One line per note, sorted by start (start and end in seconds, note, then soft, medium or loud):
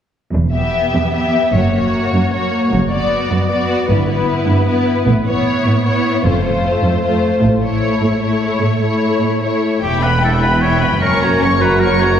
0.34 0.72 E1 soft
0.34 0.84 E2 soft
0.54 1.12 B3 soft
0.54 1.13 G4 soft
0.54 1.12 E5 soft
0.95 1.44 E2 soft
1.14 1.53 B3 soft
1.14 1.53 G4 soft
1.14 1.53 E5 soft
1.53 1.90 F#1 soft
1.53 2.03 F#2 soft
1.53 1.72 A#3 soft
1.53 1.74 F#4 soft
1.53 1.73 C#5 soft
1.74 2.31 A#3 soft
1.74 2.32 F#4 soft
1.74 2.32 C#5 soft
2.13 2.63 F#2 soft
2.33 2.71 A#3 soft
2.33 2.72 F#4 soft
2.33 2.72 C#5 soft
2.72 3.09 F#1 soft
2.72 3.21 F#2 soft
2.92 3.49 B3 soft
2.92 3.50 F#4 soft
2.92 3.48 D5 soft
3.31 3.80 F#2 soft
3.49 3.88 B3 soft
3.49 3.90 F#4 soft
3.49 3.88 D5 soft
3.89 4.26 G1 soft
3.89 4.39 G2 soft
3.89 4.07 B3 soft
3.89 4.09 E4 soft
3.89 4.07 B4 soft
4.08 4.66 B3 soft
4.08 4.67 E4 soft
4.08 4.66 B4 soft
4.49 4.98 G2 soft
4.67 5.07 B3 soft
4.67 5.07 E4 soft
4.67 5.06 B4 soft
5.07 5.44 A1 medium
5.07 5.57 A2 medium
5.27 5.85 B3 soft
5.27 5.83 E4 soft
5.27 5.84 C#5 soft
5.66 6.16 A2 soft
5.85 6.24 B3 soft
5.85 6.24 E4 soft
5.85 6.24 C#5 soft
6.25 6.62 F1 soft
6.25 6.74 F2 soft
6.25 6.43 A3 soft
6.25 6.44 F4 soft
6.25 6.44 C5 soft
6.44 7.03 A3 soft
6.44 7.00 F4 soft
6.44 7.03 C5 soft
6.84 7.33 F2 soft
7.02 7.43 A3 soft
7.02 7.41 F4 soft
7.02 7.43 C5 soft
7.43 7.80 A1 medium
7.43 7.93 A2 soft
7.63 8.21 A3 soft
7.63 8.21 E4 soft
7.63 8.21 C#5 soft
8.03 8.53 A2 soft
8.22 8.81 A3 soft
8.22 8.81 E4 soft
8.22 8.81 C#5 soft
8.63 9.13 A2 soft
8.82 9.41 A3 soft
8.82 9.41 E4 soft
8.82 9.41 C#5 soft
9.22 9.73 A2 soft
9.42 9.82 A3 soft
9.42 9.82 E4 soft
9.42 9.82 C#5 soft
9.82 10.98 E1 soft
9.82 10.98 E2 soft
9.82 10.02 E4 soft
9.82 10.05 G4 soft
9.82 10.02 E5 soft
9.82 10.01 G5 soft
10.00 10.23 B3 soft
10.00 10.23 B4 soft
10.00 10.23 G5 soft
10.00 10.21 B5 soft
10.21 10.43 E4 soft
10.21 10.33 A4 soft
10.21 10.43 E5 soft
10.21 10.42 G5 soft
10.42 10.63 B3 soft
10.42 10.63 B4 soft
10.42 10.63 G5 soft
10.42 10.62 B5 soft
10.61 10.81 E4 soft
10.61 10.80 C#5 soft
10.61 10.81 E5 soft
10.61 10.81 G5 soft
10.80 11.03 B3 soft
10.80 10.90 B4 soft
10.80 11.03 G5 soft
10.80 11.03 B5 soft
11.01 12.20 F#1 soft
11.01 12.20 F#2 soft
11.01 11.58 C#4 soft
11.01 11.20 A#4 medium
11.01 11.21 A#4 soft
11.01 11.21 C#5 soft
11.01 11.21 C#6 soft
11.21 11.42 F#4 soft
11.21 11.41 A#4 soft
11.21 11.41 C#5 soft
11.21 11.42 A#5 soft
11.41 11.62 A#4 soft
11.41 11.63 C#5 soft
11.41 11.62 C#5 soft
11.41 11.61 C#6 soft
11.61 12.20 F#4 soft
11.61 11.82 F#4 soft
11.61 11.81 A#4 soft
11.61 11.82 B4 soft
11.61 11.82 A#5 soft
11.80 12.02 A#4 soft
11.80 12.01 A#4 soft
11.80 12.01 C#5 soft
11.80 12.01 C#6 soft
12.00 12.20 F#4 soft
12.00 12.20 A#4 soft
12.00 12.20 C#5 soft
12.00 12.20 A#5 soft